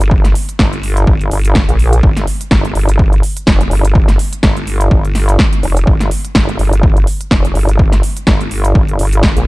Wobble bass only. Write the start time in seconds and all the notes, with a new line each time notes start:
Already playing: G1
0.59 G1
1.07 G1
1.31 G1
1.69 A#1
2.03 G1
2.51 G1
2.75 G1
3.47 F1
3.71 G1
4.43 G1
4.91 G1
5.63 F1
5.87 G1
6.35 G1
6.59 G1
7.31 F1
7.55 G1
8.27 G1
8.75 G1
8.99 G1
9.37 A#1